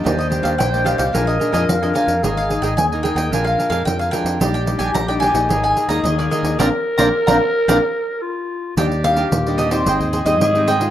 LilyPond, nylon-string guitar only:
\new Staff \with { instrumentName = "Nylon-string guitar" } { \time 4/4 \key ees \major \tempo 4 = 110 << { <g bes d'>8 <g bes d'>8. <g bes d'>8. <f aes d'>8 <f aes d'>16 <f aes d'>8 <f aes d'>16 <f aes d'>16 r16 | <ees bes ees'>16 r16 <ees bes ees'>8. <ees bes ees'>8. <f aes d'>8. <f aes d'>8. <f aes d'>8 | <g d' ees'>16 r16 <g d' ees'>8 r16 <g d' ees'>8 <aes bes ees'>4 <aes bes ees'>8 <aes bes ees'>8. | <bes c' d'>16 r8 <bes c' d'>16 r16 <bes c' d'>16 r8 <bes c' d'>16 r4. r16 |
<g bes d'>16 r16 <g bes d'>8 r16 <g bes d'>8 <c' ees'>4 <g c' ees'>8 <g c' ees'>8 <aes ees' f'>16 | } \\ { ees4 bes,4 bes,4 f,4 | aes,4 ees4 bes,4 f,4 | bes,4 bes,4 aes,4 ees4 | r1 |
ees4 bes,4 aes,4 ees4 | } >> }